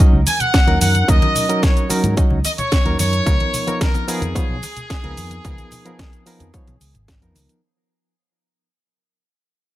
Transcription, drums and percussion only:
0.00 cabasa
0.27 open hi-hat, muted conga, high conga, cabasa
0.40 closed hi-hat, low conga, cabasa
0.54 kick, snare, closed hi-hat, muted conga, cabasa
0.68 closed hi-hat
0.81 open hi-hat, high conga, cabasa
0.95 closed hi-hat, muted conga, cabasa
1.08 kick, closed hi-hat, cabasa
1.22 closed hi-hat, muted conga, high conga
1.35 open hi-hat, low conga, cabasa
1.50 closed hi-hat, cabasa
1.63 kick, snare, closed hi-hat, muted conga, high conga, cabasa
1.77 closed hi-hat, cabasa
1.90 open hi-hat, muted conga, cabasa
2.04 closed hi-hat, high conga, cabasa
2.17 kick, closed hi-hat, cabasa
2.30 muted conga
2.45 open hi-hat, high conga, cabasa
2.58 closed hi-hat, muted conga, low conga, cabasa
2.72 kick, snare, closed hi-hat, cabasa
2.86 closed hi-hat
2.99 open hi-hat, muted conga, high conga, cabasa
3.13 closed hi-hat, cabasa
3.26 kick, closed hi-hat, muted conga, cabasa
3.40 closed hi-hat, high conga
3.54 open hi-hat, low conga, cabasa
3.67 closed hi-hat, muted conga, cabasa
3.81 kick, snare, closed hi-hat, high conga, cabasa
3.94 closed hi-hat, muted conga, cabasa
4.08 open hi-hat, cabasa
4.22 closed hi-hat, high conga, cabasa
4.36 kick, closed hi-hat, muted conga, cabasa
4.62 open hi-hat, muted conga, high conga, cabasa
4.77 closed hi-hat, low conga, cabasa
4.90 kick, snare, closed hi-hat, cabasa
5.03 closed hi-hat, muted conga
5.17 open hi-hat, high conga, cabasa
5.30 closed hi-hat, muted conga, cabasa
5.45 kick, closed hi-hat, cabasa
5.58 closed hi-hat, high conga, cabasa
5.71 open hi-hat, muted conga, low conga, cabasa
5.86 closed hi-hat, cabasa
5.99 kick, snare, closed hi-hat, muted conga, high conga, cabasa
6.13 closed hi-hat, cabasa
6.26 open hi-hat, cabasa
6.40 closed hi-hat, muted conga, high conga, cabasa
6.54 kick, closed hi-hat, cabasa
6.67 closed hi-hat, muted conga, cabasa
6.80 open hi-hat, high conga, cabasa
6.94 closed hi-hat, low conga, cabasa
7.08 kick, snare, closed hi-hat, muted conga, cabasa
7.22 closed hi-hat, cabasa
7.35 open hi-hat, muted conga, high conga, cabasa
7.49 closed hi-hat, cabasa

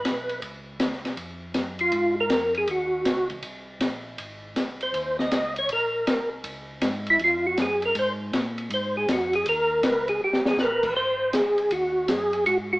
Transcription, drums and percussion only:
0.05 snare, hi-hat pedal, ride
0.29 ride
0.42 ride
0.80 snare, hi-hat pedal, ride
0.93 snare
1.05 snare, ride
1.17 ride
1.54 snare, hi-hat pedal, ride
1.79 ride
1.92 ride
2.30 snare, hi-hat pedal, ride
2.54 ride
2.67 ride
3.05 snare, hi-hat pedal, ride
3.30 kick, ride
3.42 ride
3.80 snare, hi-hat pedal, ride
4.18 ride
4.56 snare, hi-hat pedal, ride
4.81 ride
4.94 ride
5.19 snare
5.31 snare, hi-hat pedal, ride
5.56 ride
5.69 ride
6.07 snare, hi-hat pedal, ride
6.44 ride
6.81 snare, hi-hat pedal, ride
7.07 ride
7.19 ride
7.57 snare, hi-hat pedal, ride
7.82 ride
7.95 ride
8.33 snare, hi-hat pedal, ride
8.58 ride
8.70 ride
9.08 snare, hi-hat pedal, ride
9.33 ride
9.46 ride
9.83 snare, hi-hat pedal, ride
10.08 ride
10.33 snare
10.46 snare
10.58 snare, hi-hat pedal
10.83 kick, crash
11.33 snare, hi-hat pedal, ride
11.58 ride
11.71 ride
12.08 snare, hi-hat pedal, ride
12.33 ride
12.46 ride

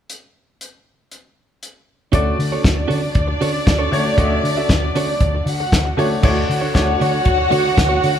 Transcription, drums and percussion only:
0.10 closed hi-hat
0.61 closed hi-hat
1.12 closed hi-hat
1.63 closed hi-hat
2.13 kick, closed hi-hat
2.40 open hi-hat
2.64 kick, snare, closed hi-hat
2.91 open hi-hat
3.15 kick, closed hi-hat
3.42 open hi-hat
3.67 kick, snare, closed hi-hat
3.93 open hi-hat
4.18 kick, closed hi-hat
4.45 open hi-hat
4.69 kick, snare, closed hi-hat
4.96 open hi-hat
5.20 kick, closed hi-hat
5.47 open hi-hat
5.72 kick, snare, closed hi-hat
5.99 open hi-hat
6.23 kick, crash
6.51 open hi-hat
6.75 kick, snare, closed hi-hat
7.01 open hi-hat
7.25 kick, closed hi-hat
7.52 open hi-hat
7.78 kick, snare, closed hi-hat
8.04 open hi-hat

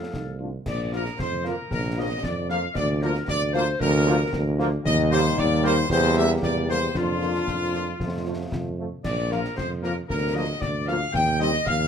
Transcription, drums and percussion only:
0.14 concert bass drum, snare
0.66 concert bass drum, snare, crash
0.92 snare
1.05 snare
1.19 concert bass drum, snare
1.45 snare
1.71 concert bass drum, snare
2.23 concert bass drum, snare
2.49 snare
2.75 concert bass drum, snare, crash
3.01 snare
3.15 snare
3.28 concert bass drum, snare
3.54 snare
3.80 concert bass drum, snare
4.33 concert bass drum, snare
4.59 snare
4.85 concert bass drum, snare, crash
5.12 snare
5.25 snare
5.38 concert bass drum, snare
5.64 snare
5.90 concert bass drum, snare
6.42 concert bass drum, snare
6.69 snare
6.95 concert bass drum, snare, crash
7.21 snare
7.35 snare
7.48 concert bass drum, snare
7.73 snare
8.00 concert bass drum, snare
8.52 concert bass drum, snare
9.04 concert bass drum, snare, crash
9.31 snare
9.44 snare
9.58 concert bass drum, snare
9.84 snare
10.10 concert bass drum, snare
10.62 concert bass drum, snare
10.88 snare
11.14 concert bass drum, snare, crash
11.40 snare
11.53 snare
11.66 concert bass drum, snare

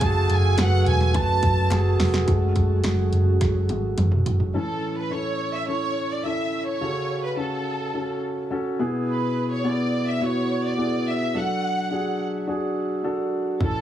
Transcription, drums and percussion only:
0.01 kick, closed hi-hat
0.30 closed hi-hat
0.58 snare, clap, closed hi-hat
0.86 closed hi-hat
1.01 snare
1.14 kick, closed hi-hat
1.43 kick, closed hi-hat
1.71 snare, clap, closed hi-hat
2.00 snare, open hi-hat
2.14 snare
2.28 kick, closed hi-hat
2.56 kick, closed hi-hat
2.84 snare, closed hi-hat
3.13 closed hi-hat
3.41 kick, snare, closed hi-hat
3.69 closed hi-hat, high tom
3.98 closed hi-hat, mid tom
4.12 mid tom
4.26 closed hi-hat, floor tom
4.40 floor tom
13.61 kick

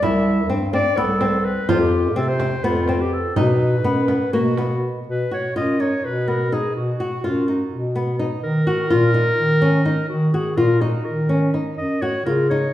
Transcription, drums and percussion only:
0.03 frame drum
0.27 frame drum
0.74 frame drum
1.21 frame drum
1.69 frame drum
1.92 frame drum
2.40 frame drum
2.88 frame drum
3.36 frame drum
3.84 frame drum
4.08 frame drum
4.58 frame drum

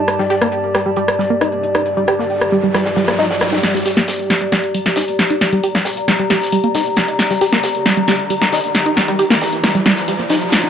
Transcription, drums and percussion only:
0.08 cross-stick, closed hi-hat
0.20 snare
0.30 snare, closed hi-hat
0.42 cross-stick
0.52 closed hi-hat
0.74 cross-stick, snare, closed hi-hat
0.96 closed hi-hat
1.08 cross-stick
1.19 snare, closed hi-hat
1.41 cross-stick, closed hi-hat
1.52 closed hi-hat
1.63 closed hi-hat
1.75 cross-stick, closed hi-hat
1.86 closed hi-hat
1.97 closed hi-hat
2.08 cross-stick, closed hi-hat
2.19 snare
2.30 open hi-hat
2.41 cross-stick, closed hi-hat
2.53 closed hi-hat
2.64 closed hi-hat
2.74 cross-stick, snare, closed hi-hat
2.86 snare, closed hi-hat
2.96 snare, closed hi-hat
3.08 cross-stick, snare, closed hi-hat
3.18 snare, closed hi-hat
3.31 snare, closed hi-hat
3.41 cross-stick, snare, closed hi-hat
3.52 snare, closed hi-hat
3.63 snare, closed hi-hat
3.75 snare, closed hi-hat
3.86 snare, closed hi-hat, open hi-hat
3.97 snare, closed hi-hat
4.08 snare, closed hi-hat
4.19 closed hi-hat
4.30 snare, closed hi-hat, open hi-hat
4.41 closed hi-hat
4.52 snare, closed hi-hat
4.64 closed hi-hat
4.74 closed hi-hat, open hi-hat
4.86 snare, closed hi-hat
4.96 snare, closed hi-hat
5.08 closed hi-hat
5.19 snare, closed hi-hat, open hi-hat
5.30 closed hi-hat
5.41 snare, closed hi-hat
5.53 closed hi-hat
5.64 closed hi-hat, open hi-hat
5.75 snare, closed hi-hat
5.85 snare, closed hi-hat, open hi-hat
5.97 closed hi-hat
6.08 snare, closed hi-hat, open hi-hat
6.19 closed hi-hat
6.30 snare, closed hi-hat
6.41 snare, closed hi-hat
6.52 closed hi-hat, open hi-hat
6.64 closed hi-hat
6.74 snare, closed hi-hat
6.86 closed hi-hat
6.96 snare, closed hi-hat, open hi-hat
7.08 closed hi-hat
7.19 snare, closed hi-hat
7.30 snare, closed hi-hat
7.41 snare, closed hi-hat, open hi-hat
7.53 snare, closed hi-hat
7.63 snare, closed hi-hat
7.75 closed hi-hat
7.86 snare, closed hi-hat, open hi-hat
7.97 closed hi-hat
8.08 snare, closed hi-hat
8.19 closed hi-hat
8.30 closed hi-hat, open hi-hat
8.42 snare, closed hi-hat
8.52 snare, closed hi-hat
8.64 closed hi-hat
8.75 snare, closed hi-hat, open hi-hat
8.86 closed hi-hat
8.97 snare, closed hi-hat
9.08 closed hi-hat
9.19 closed hi-hat, open hi-hat
9.30 snare, closed hi-hat
9.41 snare, closed hi-hat, open hi-hat
9.53 closed hi-hat
9.64 snare, closed hi-hat, open hi-hat
9.75 closed hi-hat
9.86 snare, closed hi-hat
9.96 snare, closed hi-hat
10.08 closed hi-hat, open hi-hat
10.19 closed hi-hat
10.30 snare, closed hi-hat
10.41 closed hi-hat
10.52 snare, closed hi-hat, open hi-hat
10.64 closed hi-hat

